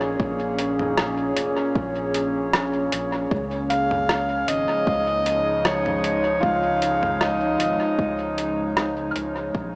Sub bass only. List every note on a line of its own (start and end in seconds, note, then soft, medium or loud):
0.00 0.16 A#1 medium
0.20 1.33 A#1 medium
1.36 1.55 F1 loud
1.76 2.89 A#1 medium
2.92 3.27 A#1 medium
3.31 4.45 C#2 medium
4.48 4.66 G#1 loud
4.87 6.39 C#2 medium
6.43 7.56 C#2 loud
7.60 7.78 G#1 loud
7.99 9.12 C#2 medium
9.15 9.50 C#2 medium
9.55 9.75 A#1 loud